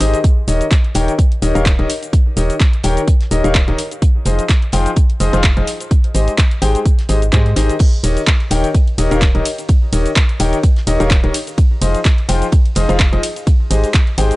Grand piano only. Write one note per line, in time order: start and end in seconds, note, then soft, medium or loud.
0.00 0.17 D#3 medium
0.00 0.16 D#4 medium
0.00 0.17 G4 medium
0.00 0.17 G#4 medium
0.00 0.17 C5 medium
0.00 0.16 D#5 loud
0.48 0.64 D#3 medium
0.48 0.64 D#4 medium
0.48 0.64 G4 medium
0.48 0.64 A#4 medium
0.48 0.64 C#5 medium
0.48 0.64 D#5 medium
0.95 1.11 D#3 medium
0.95 1.11 D#4 medium
0.95 1.11 G4 medium
0.95 1.11 A#4 medium
0.95 1.11 C#5 medium
0.95 1.11 G5 loud
1.42 1.53 D#3 medium
1.42 1.53 D#4 medium
1.42 1.53 G4 medium
1.42 1.53 A#4 medium
1.42 1.53 C#5 medium
1.42 1.53 D#5 medium
1.55 1.64 D#3 loud
1.55 1.64 D#4 medium
1.55 1.64 G4 medium
1.55 1.64 A#4 medium
1.55 1.64 C#5 medium
1.55 1.64 F5 loud
1.79 1.87 D#3 medium
1.79 1.87 D#4 medium
1.79 1.87 G4 medium
1.79 1.87 A#4 medium
1.79 1.87 C#5 medium
1.79 1.87 D#5 loud
2.37 2.53 D#3 medium
2.37 2.53 D#4 medium
2.37 2.53 G4 medium
2.37 2.53 A#4 medium
2.37 2.53 C#5 medium
2.37 2.53 D#5 medium
2.84 3.00 D#3 loud
2.84 3.00 D#4 medium
2.84 3.00 G4 medium
2.84 3.00 A#4 medium
2.84 3.00 C#5 medium
2.84 3.00 G5 loud
3.31 3.42 D#3 medium
3.31 3.42 D#4 medium
3.31 3.42 G4 medium
3.31 3.42 A#4 medium
3.31 3.42 C#5 medium
3.31 3.42 D#5 loud
3.44 3.53 D#3 loud
3.44 3.53 D#4 medium
3.44 3.53 G4 loud
3.44 3.53 A#4 medium
3.44 3.53 C#5 medium
3.44 3.53 F5 loud
3.68 3.76 D#3 medium
3.68 3.76 D#4 medium
3.68 3.76 G4 medium
3.68 3.76 A#4 medium
3.68 3.76 C#5 medium
3.68 3.76 D#5 loud
4.26 4.42 F3 medium
4.26 4.42 D#4 medium
4.26 4.42 F4 medium
4.26 4.42 G#4 medium
4.26 4.42 C5 medium
4.26 4.42 D#5 medium
4.73 4.89 F3 medium
4.73 4.89 D#4 medium
4.73 4.89 F4 medium
4.73 4.89 G#4 medium
4.73 4.89 C5 medium
4.73 4.89 G5 loud
5.20 5.31 F3 medium
5.20 5.31 D#4 medium
5.20 5.31 F4 medium
5.20 5.31 G#4 medium
5.20 5.31 C5 medium
5.20 5.31 D#5 medium
5.33 5.42 F3 loud
5.33 5.42 D#4 medium
5.33 5.42 F4 loud
5.33 5.42 G#4 loud
5.33 5.42 C5 medium
5.33 5.42 F5 loud
5.57 5.65 F3 medium
5.57 5.65 D#4 medium
5.57 5.65 F4 medium
5.57 5.65 G#4 medium
5.57 5.65 C5 medium
5.57 5.65 D#5 medium
6.15 6.31 G#3 medium
6.15 6.31 D#4 medium
6.15 6.31 G4 medium
6.15 6.31 G#4 medium
6.15 6.31 C5 medium
6.15 6.31 D#5 medium
6.62 6.78 G#3 medium
6.62 6.78 D#4 medium
6.62 6.78 G4 medium
6.62 6.78 G#4 medium
6.62 6.78 C5 medium
6.62 6.78 G5 loud
7.09 7.20 G#3 medium
7.09 7.20 D#4 medium
7.09 7.20 G4 medium
7.09 7.20 G#4 medium
7.09 7.20 C5 medium
7.09 7.20 D#5 medium
7.33 7.49 G#3 loud
7.33 7.49 D#4 medium
7.33 7.49 G4 medium
7.33 7.49 G#4 medium
7.33 7.49 C5 medium
7.33 7.49 D#5 loud
7.56 7.72 D#3 loud
7.56 7.72 D#4 medium
7.56 7.72 G4 medium
7.56 7.72 G#4 medium
7.56 7.72 C5 medium
7.56 7.72 D#5 loud
8.04 8.20 D#3 medium
8.04 8.20 D#4 medium
8.04 8.20 G4 medium
8.04 8.20 A#4 medium
8.04 8.20 C#5 medium
8.04 8.20 D#5 medium
8.51 8.67 D#3 medium
8.51 8.67 D#4 medium
8.51 8.67 G4 medium
8.51 8.67 A#4 medium
8.51 8.67 C#5 medium
8.51 8.67 G5 loud
8.98 9.09 D#3 medium
8.98 9.09 D#4 medium
8.98 9.09 G4 medium
8.98 9.09 A#4 medium
8.98 9.09 C#5 medium
8.98 9.09 D#5 medium
9.11 9.20 D#3 loud
9.11 9.20 D#4 loud
9.11 9.20 G4 medium
9.11 9.20 A#4 medium
9.11 9.20 C#5 medium
9.11 9.20 F5 loud
9.35 9.43 D#3 medium
9.35 9.43 D#4 medium
9.35 9.43 G4 medium
9.35 9.43 A#4 medium
9.35 9.43 C#5 medium
9.35 9.43 D#5 medium
9.93 10.09 D#3 medium
9.93 10.09 D#4 medium
9.93 10.09 G4 medium
9.93 10.09 A#4 medium
9.93 10.09 C#5 medium
9.93 10.09 D#5 medium
10.40 10.56 D#3 medium
10.40 10.56 D#4 medium
10.40 10.56 G4 medium
10.40 10.56 A#4 medium
10.40 10.56 C#5 medium
10.40 10.56 G5 loud
10.87 10.98 D#3 medium
10.87 10.98 D#4 medium
10.87 10.98 G4 medium
10.87 10.98 A#4 medium
10.87 10.98 C#5 medium
10.87 10.98 D#5 loud
11.00 11.09 D#3 loud
11.00 11.09 D#4 loud
11.00 11.09 G4 loud
11.00 11.09 A#4 loud
11.00 11.09 C#5 medium
11.00 11.09 F5 loud
11.24 11.32 D#3 medium
11.24 11.32 D#4 medium
11.24 11.32 G4 medium
11.24 11.32 A#4 medium
11.24 11.32 C#5 medium
11.24 11.32 D#5 medium
11.82 11.98 F3 medium
11.82 11.98 D#4 medium
11.82 11.98 F4 medium
11.82 11.98 G#4 medium
11.82 11.98 C5 medium
11.82 11.98 D#5 medium
12.29 12.45 F3 medium
12.29 12.45 D#4 medium
12.29 12.45 F4 medium
12.29 12.45 G#4 medium
12.29 12.45 C5 medium
12.29 12.45 G5 loud
12.76 12.87 F3 medium
12.76 12.87 D#4 medium
12.76 12.87 F4 medium
12.76 12.87 G#4 medium
12.76 12.87 C5 medium
12.76 12.87 D#5 loud
12.89 12.98 F3 loud
12.89 12.98 D#4 medium
12.89 12.98 F4 medium
12.89 12.98 G#4 loud
12.89 12.98 C5 medium
12.89 12.98 F5 loud
13.13 13.21 F3 medium
13.13 13.21 D#4 medium
13.13 13.21 F4 medium
13.13 13.21 G#4 medium
13.13 13.21 C5 medium
13.13 13.21 D#5 loud
13.70 13.87 G#3 medium
13.70 13.87 D#4 medium
13.70 13.87 G4 medium
13.70 13.87 G#4 medium
13.70 13.87 C5 medium
13.70 13.87 D#5 medium
14.18 14.34 G#3 medium
14.18 14.34 D#4 medium
14.18 14.34 G4 medium
14.18 14.34 G#4 medium
14.18 14.34 C5 medium
14.18 14.34 G5 loud